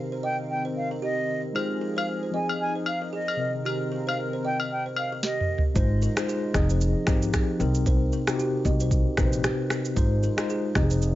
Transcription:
Already playing: tine electric piano C3 C4 D#4 A#4, analog synth pad D#3 C4 A#4
0.12 kalimba C5
0.23 kalimba D#5, flute G5
0.50 flute G5
0.65 kalimba C5
0.77 flute F5
0.91 kalimba A#4
1.02 kalimba G4, flute D#5
1.53 analog synth pad F3 G#4, tine electric piano G#3 D#4 F4 C5, kalimba G#4, high agogo
1.81 kalimba A#4
1.97 kalimba C5, flute F5, high agogo
2.23 kalimba C5
2.31 tine electric piano F3 C4 G#4, analog synth pad D#4, kalimba D#5, flute G#5
2.36 tine electric piano D#5
2.49 high agogo
2.61 flute G#5
2.75 kalimba C5
2.86 flute F5, high agogo
3.02 kalimba A#4
3.13 kalimba G#4, flute D#5
3.28 high agogo
3.36 tine electric piano C3 C4 A#4, analog synth pad D#3 C4 A#4
3.41 tine electric piano D#5
3.65 kalimba G4, high agogo
3.92 kalimba A#4
4.07 kalimba C5, flute F5, high agogo
4.33 kalimba C5
4.45 kalimba D#5, flute G5
4.60 high agogo
4.72 flute G5
4.86 kalimba C5
4.96 flute F5, high agogo
5.12 kalimba A#4
5.23 kalimba G4, flute D#5, snare
5.41 mid tom
5.58 floor tom
5.74 upright bass G#1, tine electric piano G#3 D#4 F4 C5, kalimba C5, kick, shaker
6.02 kalimba A#4, shaker
6.16 tine electric piano G#3 D#4 F4 C5, kalimba C5, finger snap, cross-stick, shaker
6.29 kalimba G#4, shaker
6.53 upright bass F1, tine electric piano F3 C4 D#4 G#4, kalimba D#5, finger snap, kick, cross-stick, shaker
6.70 kalimba C5, shaker
6.81 shaker
7.06 upright bass G#1, tine electric piano F3 C4 D#4 G4, kalimba A#4, finger snap, kick, cross-stick, shaker
7.22 shaker
7.33 kalimba G#4, finger snap, kick, cross-stick, shaker
7.59 upright bass C2, tine electric piano C3 C4 D#4 A#4, kalimba A#4, shaker
7.75 shaker
7.86 kalimba C5, kick, shaker
8.13 kalimba A#4, shaker
8.26 tine electric piano C3 C4 D#4 F#4, kalimba C5, finger snap, cross-stick, shaker
8.35 tine electric piano G4
8.39 kalimba G4, shaker
8.65 upright bass C2, kalimba D#5, kick, shaker
8.80 kalimba C5, shaker
8.91 kick, shaker
9.17 upright bass A#1, tine electric piano C3 C4 D#4 B4, kalimba A#4, finger snap, kick, cross-stick, shaker
9.25 tine electric piano C5
9.33 shaker
9.44 kalimba G4, finger snap, cross-stick, shaker
9.70 kalimba A#4, finger snap, cross-stick, shaker
9.85 shaker
9.95 upright bass G#1, tine electric piano G#3 D#4 F4 C5, kalimba C5, kick, shaker
10.23 kalimba A#4, shaker
10.37 tine electric piano G#3 D#4 F4 C5, kalimba C5, finger snap, cross-stick, shaker
10.50 kalimba G#4, shaker
10.74 upright bass F1, tine electric piano F3 C4 D#4 G4, kalimba D#5, finger snap, kick, cross-stick, shaker
10.83 tine electric piano G#4
10.90 kalimba C5, shaker
11.02 shaker

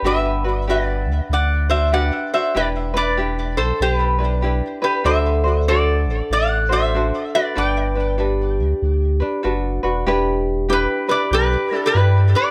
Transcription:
0.03 sub bass G1, ukulele D4 F#4 G4 B4, resonator guitar played with a steel bar B4
0.07 resonator guitar played with a steel bar E5
0.44 ukulele D4 F#4 B4
0.68 ukulele D4 F#4 G4 B4, resonator guitar played with a steel bar B4 D5
1.06 sub bass D2
1.30 sub bass D2, resonator guitar played with a steel bar D5
1.34 resonator guitar played with a steel bar F#5
1.70 ukulele D4 F#4, resonator guitar played with a steel bar C5 E5
1.92 ukulele D4 F#4 G4 B4, resonator guitar played with a steel bar D5 F#5
2.34 ukulele D4 F#4, resonator guitar played with a steel bar C5 E5
2.55 sub bass E1, ukulele D4 E4 G4 B4, resonator guitar played with a steel bar B4 D5
2.94 ukulele D4 E4 B4, resonator guitar played with a steel bar B4 D5
3.17 ukulele D4 E4 G4
3.57 sub bass B1, resonator guitar played with a steel bar A4 C5
3.80 sub bass B1, resonator guitar played with a steel bar G4 C5
3.94 resonator guitar played with a steel bar B4
4.19 ukulele D4 E4 B4
4.42 ukulele D4 E4 G4 B4
4.82 ukulele D4 E4 B4, resonator guitar played with a steel bar G4 B4
5.04 sub bass D2, ukulele D4 F#4 A4 C5, vibraphone A4, resonator guitar played with a steel bar C5 E5
5.44 ukulele D4 F#4 C5
5.68 ukulele D4 F#4 A4 C5, resonator guitar played with a steel bar A4 D5
6.06 sub bass A1
6.30 sub bass A1, resonator guitar played with a steel bar D5 F#5
6.69 ukulele D4 F#4 C5, resonator guitar played with a steel bar C5 E5
6.95 ukulele D4 F#4 A4 C5
7.35 ukulele D4 F#4, resonator guitar played with a steel bar B4 D5
7.55 sub bass G1, ukulele D4 A4 B4, vibraphone B4, resonator guitar played with a steel bar D5 G5
7.95 ukulele D4 B4
8.18 ukulele D4 A4 B4, vibraphone G4
8.59 sub bass D2
8.82 sub bass D2
9.20 ukulele D4 B4
9.43 sub bass F#1, ukulele D4 F#4 A4 B4, vibraphone F#4
9.83 sub bass E1, ukulele D4 F#4 B4
10.06 sub bass E1, ukulele D4 E4 G4 B4, vibraphone G4
10.69 ukulele D4 E4 G4 B4, resonator guitar played with a steel bar G4
10.73 resonator guitar played with a steel bar B4
11.08 ukulele D4 E4 B4, resonator guitar played with a steel bar B4 D5
11.31 sub bass B1, resonator guitar played with a steel bar G4 B4
11.71 ukulele D4 E4 B4
11.86 resonator guitar played with a steel bar G4 B4
11.95 sub bass G2, ukulele D4 E4 G4 B4
12.35 resonator guitar played with a steel bar B4 D5

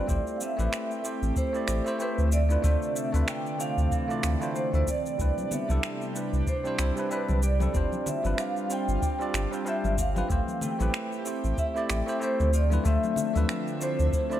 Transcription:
Already playing: harp C4 D4 F4 G4 C5, analog synth pad C4, vibraphone D5
0.07 sub bass A1, tine electric piano A3 C4 E4 G4 C5, analog synth pad A3 G4, kick, shaker
0.27 shaker
0.36 vibraphone F5
0.41 harp A3, vibraphone E5, shaker
0.57 sub bass A1, tine electric piano A3 C4 E4 G4 B4, shaker
0.73 harp C4, finger snap, shaker
0.91 shaker
1.02 tine electric piano A3 C4 E4 G4 C5, shaker
1.22 sub bass A1, shaker
1.36 harp E4, vibraphone C5, kick, shaker
1.53 tine electric piano A3 C4 E4 G4 D5, shaker
1.68 sub bass A1, harp G4, finger snap, shaker
1.84 tine electric piano A3 C4 E4 G4 C5, shaker
1.98 tine electric piano A3 C4 E4 G4 C5, vibraphone B4, shaker
2.18 sub bass D2, shaker
2.28 vibraphone E5
2.32 analog synth pad C3 D3 D5, harp F4, vibraphone D5, shaker
2.49 tine electric piano A3 D4 E4 F4 B4, shaker
2.62 sub bass D2, tine electric piano A3 D4 F4 C5 E5, harp A3, kick, shaker
2.82 shaker
2.96 vibraphone E5, shaker
3.12 sub bass D2, tine electric piano A3 D4 F4 B4 E5, shaker
3.28 harp C4, vibraphone G5, finger snap, shaker
3.46 shaker
3.58 tine electric piano A3 C4 D4 F4 C5, harp D4, vibraphone F5, shaker
3.77 sub bass D2, shaker
3.91 harp E3, kick, shaker
4.08 tine electric piano A3 D4 E4 F4 D5, shaker
4.23 sub bass D2, harp C4, finger snap, shaker
4.40 tine electric piano A3 D4 E4 F4 C5, shaker
4.55 harp A3, vibraphone C5, shaker
4.72 sub bass D2, tine electric piano A3 D4 E4 F4 E5, shaker
4.87 harp C4, vibraphone D5, kick, shaker
5.06 shaker
5.18 sub bass C2, analog synth pad C3 G3 D4 G4, tine electric piano G3 C4 D4 E4 B4, kick, shaker
5.38 high conga, shaker
5.51 harp B3, vibraphone E5, low conga, shaker
5.68 sub bass C2, tine electric piano G3 D4 E4 A4, high conga, shaker
5.83 harp C4, finger snap, shaker
6.01 shaker
6.14 tine electric piano G3 D4 E4 B4, shaker
6.33 sub bass C2, shaker
6.47 harp D4, vibraphone C5, kick, shaker
6.64 tine electric piano G3 C4 D4 E4 C5, shaker
6.79 sub bass C2, harp E4, finger snap, shaker
6.96 tine electric piano G3 C4 D4 E4 B4, shaker
7.09 tine electric piano G3 C4 D4 E4 B4, vibraphone B4, shaker
7.28 sub bass C2, high conga, low conga, shaker
7.42 harp G4, vibraphone D5, shaker
7.59 tine electric piano G3 C4 D4 E4 A4, high conga, shaker
7.73 sub bass G1, tine electric piano G3 C4 D4 F4 C5, analog synth pad G3 C4 F4, harp C4, kick, shaker
7.92 high conga, shaker
8.06 vibraphone E5, low conga, shaker
8.23 sub bass G1, tine electric piano G3 C4 D4 F4 B4, high conga, shaker
8.38 harp D4, vibraphone F5, finger snap, shaker
8.57 shaker
8.69 tine electric piano G3 C4 D4 F4 C5, harp F4, shaker
8.73 vibraphone G5
8.88 sub bass G1, shaker
9.02 harp G4, kick, shaker
9.19 tine electric piano G3 C4 D4 F4 D5, shaker
9.34 sub bass G1, harp G4, finger snap, shaker
9.51 tine electric piano G3 C4 D4 F4 C5, shaker
9.65 tine electric piano G3 C4 D4 F4 C5, harp C5, vibraphone E5, shaker
9.84 sub bass G1, high conga, shaker
9.98 harp C4, vibraphone F5, kick, shaker
10.15 tine electric piano G3 C4 D4 F4 B4, high conga, shaker
10.28 sub bass A1, tine electric piano E3 A3 C4 G4 C5, analog synth pad A3 G4, kick, shaker
10.48 high conga, shaker
10.61 harp A3, vibraphone G5, low conga, shaker
10.79 sub bass A1, tine electric piano A3 C4 E4 G4 B4, high conga, shaker
10.94 harp C4, finger snap, shaker
11.12 shaker
11.24 tine electric piano A3 C4 E4 G4 C5, shaker
11.44 sub bass A1, shaker
11.58 harp E4, vibraphone E5, kick, shaker
11.74 tine electric piano A3 C4 E4 G4 D5, shaker
11.89 sub bass A1, harp G4, finger snap, shaker
12.06 tine electric piano A3 C4 E4 G4 C5, shaker
12.19 tine electric piano A3 C4 E4 G4 C5, shaker
12.23 vibraphone C5
12.40 sub bass D2, high conga, low conga, shaker
12.53 analog synth pad D3 F3 C4 E5, harp F4, vibraphone D5, shaker
12.70 tine electric piano A3 D4 E4 F4 B4, high conga, shaker
12.83 sub bass D2, tine electric piano A3 D4 F4 C5 E5, harp A3, vibraphone E5, kick, shaker
13.04 high conga, shaker
13.16 low conga, shaker
13.34 sub bass D2, tine electric piano A3 D4 F4 B4 E5, high conga, shaker
13.49 harp C4, finger snap, shaker
13.67 shaker
13.80 tine electric piano A3 D4 E4 F4 C5, harp D4, vibraphone C5, shaker
13.99 sub bass D2, shaker
14.13 harp E4, kick, shaker
14.30 tine electric piano A3 D4 E4 F4 D5, shaker

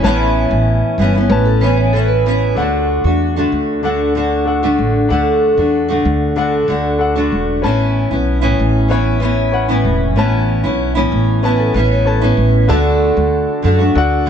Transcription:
Already playing: grand piano C#4 B4 A5
0.03 upright bass A1, steel-string acoustic guitar A2 E3 B3 C#4 E4, grand piano C#4 B4 A5
0.51 upright bass A1
0.98 upright bass G1, steel-string acoustic guitar E3 B3 C#4 E4
1.15 steel-string acoustic guitar B3 C#4 E4
1.30 upright bass A1, grand piano C#4 B4 A5, vibraphone B4
1.46 vibraphone A4
1.61 steel-string acoustic guitar E3 B3 C#4 E4, vibraphone B4
1.77 vibraphone C#5
1.93 steel-string acoustic guitar E3 B3 C#4 E4, vibraphone A4
2.08 vibraphone B4
2.26 steel-string acoustic guitar E3 B3 C#4 E4
2.55 upright bass D2, steel-string acoustic guitar D3 A3, grand piano D4 A4 F#5
2.59 steel-string acoustic guitar D4 F#4
3.04 upright bass E2, steel-string acoustic guitar A3 D4 F#4
3.36 steel-string acoustic guitar D3 A3 D4 F#4
3.52 upright bass D2
3.83 steel-string acoustic guitar D3 A3 D4 F#4, grand piano D4 A4 F#5
4.15 steel-string acoustic guitar D3 A3 D4 F#4
4.45 grand piano D4 A4 F#5
4.63 steel-string acoustic guitar D3 A3 D4 F#4
4.78 upright bass A1
5.09 upright bass D2, steel-string acoustic guitar D3 A3 D4, grand piano D4 A4 F#5
5.13 steel-string acoustic guitar F#4
5.57 upright bass E2, steel-string acoustic guitar A3 D4 F#4
5.89 steel-string acoustic guitar D3 A3 D4 F#4
6.05 upright bass D2
6.36 steel-string acoustic guitar D3 A3 D4 F#4, grand piano D4 A4 F#5
6.68 upright bass D2, steel-string acoustic guitar D3 A3 D4 F#4
6.99 grand piano D4 A4 F#5
7.16 steel-string acoustic guitar D3 A3 D4 F#4
7.32 upright bass E1
7.62 upright bass A1, steel-string acoustic guitar E3 B3 C#4, grand piano C#4 B4 A5
7.66 steel-string acoustic guitar E4
8.11 upright bass B1, steel-string acoustic guitar B3 C#4 E4
8.41 steel-string acoustic guitar A2 E3 B3 C#4 E4
8.59 upright bass A1
8.88 steel-string acoustic guitar E3 B3 C#4 E4, grand piano C#4 B4 C#5
9.20 steel-string acoustic guitar E3 B3 C#4 E4
9.52 grand piano C#4 B4 F#5
9.69 steel-string acoustic guitar A2 E3 B3 C#4 E4
9.85 upright bass E1
10.16 upright bass A1, steel-string acoustic guitar E3 B3 C#4 E4, grand piano C#4 B4 A5
10.64 upright bass B1, steel-string acoustic guitar B3 C#4 E4
10.95 steel-string acoustic guitar A2 E3 B3 C#4 E4
11.12 upright bass A1
11.43 steel-string acoustic guitar E3 B3 C#4 E4, grand piano C#4 B4 A5, vibraphone B4
11.60 vibraphone A4
11.74 upright bass A1, steel-string acoustic guitar E3 B3 C#4 E4, vibraphone B4
11.92 vibraphone C#5
12.05 grand piano C#4 B4 A5, vibraphone A4
12.21 steel-string acoustic guitar A2 E3 B3 C#4 E4, vibraphone B4
12.37 upright bass A1
12.68 upright bass D2, steel-string acoustic guitar D3 A3 D4 F#4, grand piano F#4 A4 D5 A5
13.17 upright bass D2
13.62 upright bass F#2, steel-string acoustic guitar D3 A3 D4 F#4
13.79 steel-string acoustic guitar A3 D4 F#4
13.95 upright bass D2, grand piano F#4 A4 D5 F#5
14.26 steel-string acoustic guitar D3

